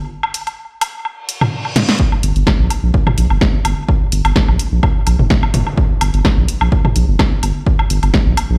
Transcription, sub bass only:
0, 0, Header, 1, 2, 480
1, 0, Start_track
1, 0, Tempo, 472441
1, 108, Time_signature, 4, 2, 24, 8
1, 8717, End_track
2, 0, Start_track
2, 0, Title_t, "Sub bass"
2, 0, Program_c, 0, 38
2, 2267, Note_on_c, 0, 31, 98
2, 2360, Note_off_c, 0, 31, 0
2, 2397, Note_on_c, 0, 31, 94
2, 2476, Note_off_c, 0, 31, 0
2, 2637, Note_on_c, 0, 34, 96
2, 2716, Note_off_c, 0, 34, 0
2, 2877, Note_on_c, 0, 34, 81
2, 2956, Note_off_c, 0, 34, 0
2, 3227, Note_on_c, 0, 34, 85
2, 3319, Note_off_c, 0, 34, 0
2, 3356, Note_on_c, 0, 31, 92
2, 3436, Note_off_c, 0, 31, 0
2, 3707, Note_on_c, 0, 31, 80
2, 3800, Note_off_c, 0, 31, 0
2, 4188, Note_on_c, 0, 31, 102
2, 4280, Note_off_c, 0, 31, 0
2, 4317, Note_on_c, 0, 31, 89
2, 4396, Note_off_c, 0, 31, 0
2, 4557, Note_on_c, 0, 34, 98
2, 4636, Note_off_c, 0, 34, 0
2, 4797, Note_on_c, 0, 34, 79
2, 4876, Note_off_c, 0, 34, 0
2, 5148, Note_on_c, 0, 34, 87
2, 5240, Note_off_c, 0, 34, 0
2, 5277, Note_on_c, 0, 31, 94
2, 5356, Note_off_c, 0, 31, 0
2, 5628, Note_on_c, 0, 31, 82
2, 5720, Note_off_c, 0, 31, 0
2, 6108, Note_on_c, 0, 31, 93
2, 6200, Note_off_c, 0, 31, 0
2, 6237, Note_on_c, 0, 31, 94
2, 6316, Note_off_c, 0, 31, 0
2, 6477, Note_on_c, 0, 34, 98
2, 6556, Note_off_c, 0, 34, 0
2, 6717, Note_on_c, 0, 34, 79
2, 6796, Note_off_c, 0, 34, 0
2, 7068, Note_on_c, 0, 34, 89
2, 7160, Note_off_c, 0, 34, 0
2, 7197, Note_on_c, 0, 31, 93
2, 7276, Note_off_c, 0, 31, 0
2, 7547, Note_on_c, 0, 31, 86
2, 7640, Note_off_c, 0, 31, 0
2, 8028, Note_on_c, 0, 31, 100
2, 8120, Note_off_c, 0, 31, 0
2, 8157, Note_on_c, 0, 31, 96
2, 8236, Note_off_c, 0, 31, 0
2, 8397, Note_on_c, 0, 34, 98
2, 8476, Note_off_c, 0, 34, 0
2, 8636, Note_on_c, 0, 34, 79
2, 8716, Note_off_c, 0, 34, 0
2, 8717, End_track
0, 0, End_of_file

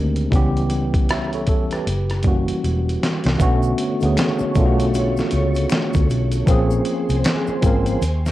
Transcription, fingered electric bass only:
0, 0, Header, 1, 3, 480
1, 0, Start_track
1, 0, Tempo, 769231
1, 199, Time_signature, 4, 2, 24, 8
1, 5190, End_track
2, 0, Start_track
2, 0, Title_t, "Fingered electric bass"
2, 0, Program_c, 0, 33
2, 0, Note_on_c, 0, 38, 93
2, 164, Note_off_c, 0, 38, 0
2, 201, Note_on_c, 0, 37, 92
2, 922, Note_off_c, 0, 37, 0
2, 922, Note_on_c, 0, 40, 77
2, 1123, Note_off_c, 0, 40, 0
2, 1164, Note_on_c, 0, 30, 92
2, 1566, Note_off_c, 0, 30, 0
2, 1645, Note_on_c, 0, 28, 73
2, 1845, Note_off_c, 0, 28, 0
2, 2030, Note_on_c, 0, 36, 82
2, 2107, Note_off_c, 0, 36, 0
2, 2121, Note_on_c, 0, 35, 88
2, 2322, Note_off_c, 0, 35, 0
2, 2509, Note_on_c, 0, 38, 89
2, 2587, Note_off_c, 0, 38, 0
2, 2844, Note_on_c, 0, 35, 89
2, 3246, Note_off_c, 0, 35, 0
2, 3323, Note_on_c, 0, 37, 85
2, 3523, Note_off_c, 0, 37, 0
2, 3715, Note_on_c, 0, 38, 83
2, 3790, Note_off_c, 0, 38, 0
2, 3800, Note_on_c, 0, 35, 84
2, 4002, Note_off_c, 0, 35, 0
2, 4041, Note_on_c, 0, 34, 86
2, 4243, Note_off_c, 0, 34, 0
2, 4426, Note_on_c, 0, 36, 83
2, 4505, Note_off_c, 0, 36, 0
2, 4764, Note_on_c, 0, 32, 95
2, 4964, Note_off_c, 0, 32, 0
2, 5002, Note_on_c, 0, 39, 94
2, 5190, Note_off_c, 0, 39, 0
2, 5190, End_track
3, 0, Start_track
3, 0, Title_t, "Muted fingered electric bass strokes"
3, 2748, Note_on_c, 9, 29, 45
3, 2811, Note_off_c, 9, 29, 0
3, 4667, Note_on_c, 9, 29, 43
3, 4729, Note_off_c, 9, 29, 0
3, 5190, End_track
0, 0, End_of_file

